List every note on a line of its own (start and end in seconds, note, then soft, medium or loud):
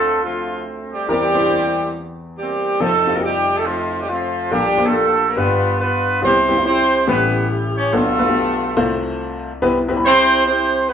0.00 1.05 D2 medium
0.00 1.05 D3 medium
0.00 0.20 A3 medium
0.00 0.17 C4 medium
0.00 0.22 C4 medium
0.00 0.17 D4 medium
0.00 0.17 F4 medium
0.00 0.22 F4 medium
0.00 0.20 A4 loud
0.00 0.17 C5 medium
0.23 0.63 F3 medium
0.23 1.05 A3 medium
0.23 1.05 C4 medium
0.23 0.63 F4 medium
0.93 1.08 G3 medium
0.93 1.08 G4 medium
1.08 2.76 E2 medium
1.08 2.76 E3 medium
1.08 1.91 G3 medium
1.08 1.91 A#3 medium
1.08 1.23 C4 medium
1.08 1.91 C4 medium
1.08 1.23 E4 medium
1.08 1.23 G4 medium
1.08 1.91 G4 loud
1.08 1.23 A#4 medium
1.35 1.40 C4 medium
1.35 1.40 E4 medium
1.35 1.40 G4 medium
1.35 1.40 C5 medium
1.43 1.89 C4 medium
1.43 1.47 D4 soft
1.43 1.88 G4 medium
1.43 1.89 C5 medium
1.48 1.91 E4 medium
2.39 2.78 G3 medium
2.39 2.78 A#3 medium
2.39 2.78 C4 medium
2.39 2.78 G4 medium
2.80 4.48 F1 medium
2.80 4.48 F2 medium
2.80 3.16 A3 loud
2.80 2.95 C4 medium
2.80 3.23 C4 medium
2.80 2.95 D#4 medium
2.80 3.23 D#4 medium
2.80 2.95 F4 medium
2.80 2.95 A4 medium
2.80 3.16 A4 loud
3.07 3.11 C4 medium
3.07 3.11 D#4 medium
3.07 3.11 F4 medium
3.07 3.11 G4 medium
3.15 3.24 A#3 medium
3.15 3.60 C4 medium
3.15 3.60 D#4 medium
3.15 3.60 F4 medium
3.15 3.19 F#4 medium
3.15 3.24 A#4 medium
3.20 3.58 G3 medium
3.20 3.65 C4 medium
3.20 4.05 D#4 medium
3.20 3.63 G4 medium
3.20 3.58 G4 loud
3.58 3.66 A3 medium
3.58 3.66 A4 loud
3.66 4.01 F3 medium
3.66 4.08 A3 medium
3.66 4.08 C4 medium
3.66 4.01 F4 medium
4.01 4.09 G3 medium
4.01 4.09 G4 medium
4.09 4.52 F3 medium
4.09 4.49 A3 medium
4.09 4.49 C4 medium
4.09 4.52 F4 medium
4.51 5.33 A#1 medium
4.51 5.33 A#2 medium
4.51 4.86 G3 loud
4.51 4.66 A#3 medium
4.51 4.66 D4 medium
4.51 4.85 D4 medium
4.51 4.66 F4 medium
4.51 4.86 G4 loud
4.51 4.66 A4 medium
4.78 4.82 A#3 medium
4.78 4.82 D4 medium
4.78 4.82 F4 medium
4.78 4.82 C5 medium
4.86 5.29 A3 medium
4.86 5.31 A#3 medium
4.86 5.31 D4 medium
4.86 5.34 D4 medium
4.86 5.31 F4 medium
4.86 5.34 F4 medium
4.86 5.31 G4 medium
4.86 5.29 A4 loud
5.28 5.37 A#3 medium
5.28 5.37 A#4 medium
5.37 6.18 G1 medium
5.37 6.18 G2 medium
5.37 6.09 B3 medium
5.37 5.79 B3 medium
5.37 6.09 D4 medium
5.37 5.80 D4 medium
5.37 6.09 F4 medium
5.37 5.80 F4 medium
5.37 6.09 G4 medium
5.37 5.79 B4 medium
5.80 6.20 B3 medium
5.80 6.20 D4 medium
5.80 6.20 F4 medium
5.80 6.20 B4 medium
6.22 7.03 C2 medium
6.22 7.03 C3 medium
6.22 6.36 G3 medium
6.22 6.36 B3 medium
6.22 6.36 C4 medium
6.22 6.64 C4 loud
6.22 6.36 E4 medium
6.22 6.65 E4 medium
6.22 6.36 G4 medium
6.22 6.65 G4 medium
6.22 6.64 C5 loud
6.48 6.53 G3 medium
6.48 6.53 B3 medium
6.48 6.53 C4 medium
6.48 6.53 E4 medium
6.48 6.53 G4 medium
6.57 7.02 G3 medium
6.57 7.02 C4 medium
6.57 7.02 E4 medium
6.57 6.61 F4 medium
6.62 7.05 C4 medium
6.62 7.04 G4 medium
6.62 7.05 G4 medium
6.62 7.05 C5 loud
6.66 7.05 E4 medium
7.07 7.89 A1 medium
7.07 7.88 A2 medium
7.07 7.79 G3 medium
7.07 7.79 A3 medium
7.07 7.48 B3 medium
7.07 7.79 C#4 medium
7.07 7.79 E4 medium
7.07 7.89 E4 medium
7.07 7.79 G4 medium
7.07 7.89 G4 medium
7.07 7.48 B4 medium
7.77 7.92 C#4 medium
7.77 7.92 C#5 medium
7.93 8.74 B1 medium
7.93 8.74 B2 medium
7.93 8.07 A3 medium
7.93 8.78 A3 medium
7.93 8.07 B3 medium
7.93 8.07 D4 medium
7.93 8.74 D4 medium
7.93 8.07 F4 medium
7.93 8.74 F4 medium
7.93 8.07 A4 medium
7.93 8.78 A4 loud
8.19 8.23 A3 medium
8.19 8.23 B3 medium
8.19 8.23 D4 medium
8.19 8.23 F4 medium
8.19 8.23 B4 medium
8.27 8.72 A3 medium
8.27 8.72 B3 medium
8.27 8.72 D4 medium
8.27 8.72 F4 medium
8.27 8.72 G4 medium
8.77 9.58 C2 medium
8.77 9.58 C3 medium
8.77 9.49 A3 medium
8.77 9.49 C4 medium
8.77 9.49 F4 loud
8.77 9.49 A4 medium
8.77 9.49 C5 loud
9.62 10.93 C2 medium
9.62 10.93 C3 medium
9.62 9.76 B3 loud
9.62 9.76 C4 medium
9.62 9.77 E4 medium
9.62 9.76 G4 medium
9.62 9.77 B4 loud
9.88 9.93 B3 medium
9.88 9.93 C4 medium
9.88 9.93 E4 medium
9.88 9.93 G4 medium
9.88 9.93 B4 medium
9.97 10.42 G3 medium
9.97 10.42 C4 medium
9.97 10.42 E4 medium
9.97 10.42 G4 medium
9.97 10.42 B5 medium
10.05 10.45 C4 loud
10.05 10.47 E4 medium
10.05 10.47 G4 medium
10.05 10.45 C5 loud
10.47 10.87 C4 medium
10.47 10.90 E4 medium
10.47 10.90 G4 medium
10.47 10.87 C5 medium
10.89 10.93 B3 medium
10.89 10.93 B4 medium